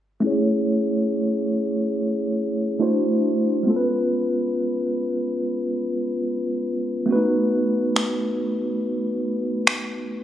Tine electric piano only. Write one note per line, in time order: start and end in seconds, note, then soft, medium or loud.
0.20 2.75 A3 medium
0.20 2.76 C#4 medium
0.20 2.77 E4 medium
0.25 2.77 G#4 medium
0.25 2.78 C#5 medium
2.79 3.66 A3 medium
2.79 3.66 D4 medium
2.79 3.66 E4 medium
2.79 3.67 F#4 medium
2.79 3.67 C5 medium
3.63 7.04 G#3 medium
3.63 7.04 B3 medium
3.63 7.05 C#4 medium
3.68 7.06 F4 medium
3.68 3.75 A4 medium
3.76 7.10 B4 medium
7.06 10.24 A3 medium
7.06 10.24 B3 medium
7.06 7.16 C#4 medium
7.11 10.24 F#4 medium
7.11 10.24 B4 medium
7.16 10.24 D#4 medium